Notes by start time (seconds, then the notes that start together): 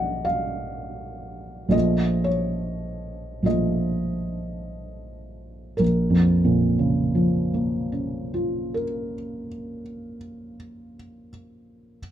Already playing: A#1 F#3 A#3 D#4 D#5 F#5
0.25 F5
1.69 A#1 F3 A3 F4 D#5
2.24 C#5
3.43 A#1 F3 A3 D#5
3.47 F4
5.77 A#1 A#4
6.10 F2
6.45 A#2
6.79 C#3
7.15 F3
7.54 A#3
7.92 C#4
8.34 F4
8.74 A#4